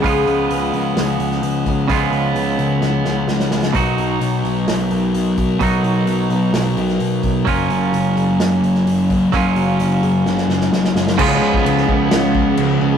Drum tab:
CC |----------------|----------------|----------------|----------------|
HH |o-o-o-o-o-o-o-o-|o-o-o-o---------|o-o-o-o-o-o-o-o-|o-o-o-o-o-o-o-o-|
SD |--------o--o----|--------o-o-oooo|--------o-------|--------o--o----|
BD |o-------------o-|o---------------|o-------------o-|o-------------o-|

CC |----------------|----------------|x---x---x---x---|
HH |o-o-o-o-o-o-o-o-|o-o-o-o---------|----------------|
SD |--------o--o----|--------oooooooo|-----o--o-------|
BD |o-------------o-|o---------------|o--o--o---o-----|